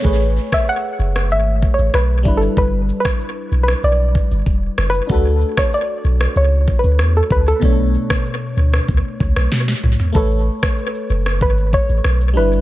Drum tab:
SH |x-xxx-xxx-xxx-xx|x-xxx-xxx-xxx-xx|x-xxx-xxx-xxx-xx|x-xxx-xxx-xxx-xx|
SD |---r---r----r---|---r---r------r-|---r---r----r---|---r---r---roo--|
T2 |----------------|----------------|----------------|--------------o-|
FT |----------------|----------------|----------------|---------------o|
BD |o--o------o---o-|o--o------o-o---|o--o------o---o-|o--o----o-o-----|

SH |xx-xxxxxxxxxxxxx|
SD |---r---r----r---|
T2 |----------------|
FT |----------------|
BD |o--o----o-o-----|